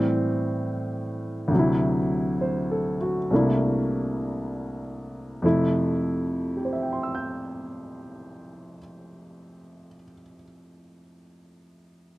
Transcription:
grand piano
Already playing: A2 E3 G3 C4
1.48 D2 C3
1.55 F#3
1.59 E4
2.41 C5
2.71 A4
3.01 F#4
3.31 C2 C3 A3 A#3 D4
3.35 E4
5.42 F2 C3 A3 E4
6.57 G4
6.65 C5
6.73 E5
6.82 G5
6.92 C6
7.03 E6
7.15 G6

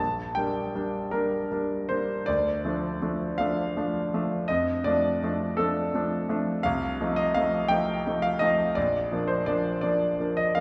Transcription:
grand piano
Already playing: A5
0.00 A#1
0.35 G3 A#3 D4 G5
0.75 G3 A#3 D4
1.11 G3 A#3 D4 A#4
1.52 G3 A#3 D4
1.89 G3 A#3 D4 C5
2.26 D2 D5
2.65 F3 A3 D4
3.02 F3 A3 D4
3.38 F3 A3 D4 F5
3.77 F3 A3 D4
4.14 F3 A3 D4
4.48 F2 D#5
4.84 F3 A3 D4 D5
5.23 F3 A3 D4
5.57 F3 A3 D4 A4
5.94 F3 A3 D4
6.29 F3 A3 D4
6.63 C2 F5
7.01 F3 A3 D#4
7.16 D#5
7.34 F3 A3 D#4 F5
7.68 F3 A3 D#4 G5
8.07 F3 A3 D#4
8.22 F5
8.39 F3 A3 D#4 D#5
8.75 A#1 D5
9.12 F3 A#3 D4
9.28 C5
9.46 F3 A#3 D4 D5
9.81 F3 A#3 D4 D5
10.20 F3 A#3 D4
10.37 D#5
10.55 F3 A#3 F5

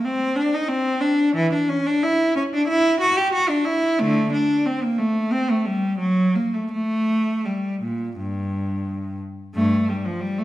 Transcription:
cello
0.05 C4
0.36 D4
0.54 D#4
0.68 C4
1.01 D4
1.36 E3
1.54 D4
1.69 C#4
1.87 D4
2.03 E4
2.36 C#4
2.54 D4
2.68 E4
3.00 F#4
3.17 G4
3.34 F#4
3.49 D4
3.65 E4
3.99 D3 A3
4.33 D4
4.66 C4
4.83 A#3
4.99 A3
5.32 C4
5.50 A3
5.65 G3
5.99 F#3
6.35 A#3
6.54 A3
6.71 A3
7.45 G3
7.82 A#2
8.17 G2
9.55 G2 A3
9.89 G3
10.06 F3
10.21 G3
10.39 A3

